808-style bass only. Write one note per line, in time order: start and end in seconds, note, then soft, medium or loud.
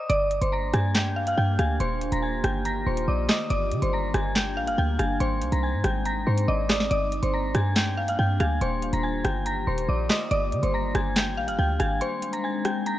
0.10 0.40 G1 loud
0.42 0.65 G1 loud
0.63 0.73 G#1 loud
0.74 1.35 G2 loud
1.38 1.58 G2 loud
1.59 1.79 D2 loud
1.80 2.11 D#1 loud
2.12 2.43 D#1 loud
2.44 2.85 G1 loud
2.86 3.07 D#1 loud
3.08 3.28 A#1 loud
3.50 3.73 G1 loud
3.72 3.82 D3 loud
3.82 4.13 G1 loud
4.14 4.58 G1 loud
4.57 4.69 A#1 loud
4.67 4.77 G1 loud
4.78 4.98 D2 loud
4.99 5.20 G1 loud
5.21 5.43 G#1 loud
5.42 5.52 C2 loud
5.52 5.75 C2 loud
5.74 5.84 G#2 loud
5.84 6.25 G#1 loud
6.27 6.47 G#2 loud
6.48 6.89 G#1 loud
6.91 7.21 G1 loud
7.23 7.45 G1 loud
7.44 7.54 G#1 loud
7.55 8.16 G2 loud
8.18 8.39 G2 loud
8.40 8.60 D2 loud
8.61 8.92 D#1 loud
8.93 9.23 D#1 loud
9.25 9.66 G1 loud
9.67 9.88 D#1 loud
9.89 10.09 A#1 loud
10.31 10.54 G1 loud
10.52 10.63 D3 loud
10.63 10.94 G1 loud
10.95 11.39 G1 loud
11.38 11.50 A#1 loud
11.48 11.58 G1 loud
11.59 11.79 D2 loud
11.80 12.01 G#1 loud